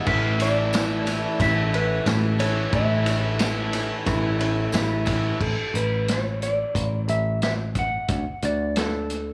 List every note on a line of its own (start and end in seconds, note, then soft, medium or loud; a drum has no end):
0.06 1.25 A1 loud
0.06 0.40 A2 medium
0.06 0.41 E3 medium
0.06 0.40 A3 medium
0.06 0.41 C#4 medium
0.06 2.71 E4 medium
0.06 0.38 E4 medium
0.06 2.70 A4 medium
0.06 2.71 E5 medium
0.06 0.41 E5 loud
0.06 kick loud
0.06 tambourine soft
0.06 crash medium
0.39 0.74 A3 soft
0.39 0.73 E4 medium
0.39 1.41 D5 medium
0.39 ride medium
0.39 tambourine medium
0.73 1.07 A2 medium
0.73 1.07 E3 medium
0.73 1.08 A3 medium
0.73 1.04 E4 medium
0.73 snare loud
0.73 ride loud
0.73 tambourine loud
1.05 1.39 A3 soft
1.05 1.40 E4 medium
1.05 ride medium
1.05 tambourine medium
1.39 1.99 A1 loud
1.39 1.73 E3 medium
1.39 1.74 A3 medium
1.39 1.73 C#4 medium
1.39 1.71 E4 medium
1.39 1.76 E5 medium
1.39 kick medium
1.39 ride loud
1.39 tambourine medium
1.73 2.06 A3 soft
1.73 2.06 C#4 soft
1.73 2.07 E4 medium
1.73 2.43 B4 medium
1.73 ride medium
1.73 tambourine soft
2.06 2.66 A1 loud
2.06 2.40 A2 medium
2.06 2.40 E3 medium
2.06 2.40 A3 medium
2.06 2.39 C#4 medium
2.06 2.38 E4 medium
2.06 snare loud
2.06 ride loud
2.06 tambourine medium
2.39 2.71 A2 medium
2.39 2.73 E3 medium
2.39 2.73 A3 medium
2.39 2.73 C#4 soft
2.39 2.73 E4 medium
2.39 2.75 C#5 medium
2.39 ride medium
2.39 tambourine medium
2.72 3.91 A1 loud
2.72 3.07 A2 medium
2.72 3.07 E3 medium
2.72 3.07 A3 medium
2.72 3.07 C#4 medium
2.72 3.04 E4 medium
2.72 5.38 A4 medium
2.72 5.38 C#5 medium
2.72 5.38 E5 medium
2.72 4.71 E5 medium
2.72 kick medium
2.72 ride medium
2.72 tambourine soft
3.06 3.39 A3 soft
3.06 3.40 C#4 soft
3.06 3.40 E4 medium
3.06 ride medium
3.06 tambourine medium
3.39 3.73 A2 medium
3.39 3.73 E3 medium
3.39 3.74 A3 medium
3.39 3.72 C#4 medium
3.39 3.71 E4 medium
3.39 snare loud
3.39 ride loud
3.39 tambourine medium
3.72 4.05 A3 medium
3.72 4.06 C#4 medium
3.72 4.06 E4 medium
3.72 ride medium
3.72 tambourine medium
4.05 4.66 A1 loud
4.05 4.40 E3 medium
4.05 4.40 A3 medium
4.05 4.39 C#4 medium
4.05 4.38 E4 medium
4.05 kick medium
4.05 ride loud
4.05 tambourine medium
4.39 4.72 A3 medium
4.39 4.73 C#4 medium
4.39 4.73 E4 medium
4.39 ride medium
4.39 tambourine soft
4.72 5.33 A1 medium
4.72 5.07 A2 medium
4.72 5.07 E3 medium
4.72 5.07 A3 medium
4.72 5.07 C#4 medium
4.72 5.04 E4 loud
4.72 snare loud
4.72 ride medium
4.72 tambourine medium
5.06 5.40 A2 medium
5.06 5.40 E3 medium
5.06 5.42 A3 medium
5.06 5.41 C#4 medium
5.06 5.40 E4 medium
5.06 kick medium
5.06 ride medium
5.06 tambourine medium
5.40 5.56 A1 medium
5.40 5.76 A4 medium
5.40 kick loud
5.40 crash medium
5.74 6.63 A1 medium
5.74 6.10 B4 medium
5.74 closed hi-hat medium
6.08 6.42 C#5 medium
6.08 snare loud
6.08 closed hi-hat medium
6.42 7.09 D5 medium
6.42 closed hi-hat medium
6.75 7.05 A1 medium
6.75 kick medium
6.75 closed hi-hat medium
7.08 7.97 A1 medium
7.08 7.40 E5 medium
7.08 closed hi-hat medium
7.42 7.52 E5 medium
7.42 snare loud
7.42 closed hi-hat medium
7.75 8.41 F#5 loud
7.75 kick medium
7.75 closed hi-hat medium
8.08 8.24 D2 loud
8.08 kick loud
8.08 closed hi-hat medium
8.42 9.32 D2 loud
8.42 8.75 D5 medium
8.42 closed hi-hat medium
8.76 9.33 A4 medium
8.76 snare medium
8.76 closed hi-hat medium
9.10 closed hi-hat medium